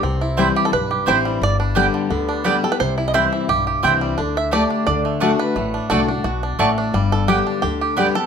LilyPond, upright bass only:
\new Staff \with { instrumentName = "Upright bass" } { \clef bass \time 4/4 \key g \major \tempo 4 = 174 c,2 b,,4 a,,4 | g,,2 d,2 | c,2 b,,4 c,4 | d,2 d,2 |
a,,4 c,4 b,,4 a,,4 | g,,2 d,2 | }